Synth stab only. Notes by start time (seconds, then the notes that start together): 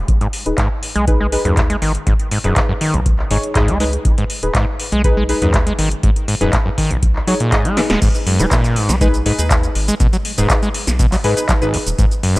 0.46 D#4 G#4 B4
1.07 D#4 G#4 B4
1.32 D#4 G#4 B4
1.45 D#4 G#4 B4
2.44 D#4 G#4 B4
3.31 D#4 G#4 C#5
3.56 D#4 G#4 D#5
3.80 D#4 G#4 B4
4.43 D#4 G#4 B4
5.04 D#4 G#4 B4
5.29 D#4 G#4 B4
5.42 D#4 G#4 B4
6.41 D#4 G#4 B4
7.27 D#4 G#4 C#5
7.52 D#4 G#4 D#5
7.77 D#4 G#4 B4
8.39 D#4 G#4 B4
9.01 D#4 G#4 B4
9.26 D#4 G#4 B4
9.39 D#4 G#4 B4
10.38 D#4 G#4 B4
11.24 D#4 G#4 B4
11.37 D#4 G#4 B4
11.62 D#4 G#4 B4
12.36 D#4 G#4 B4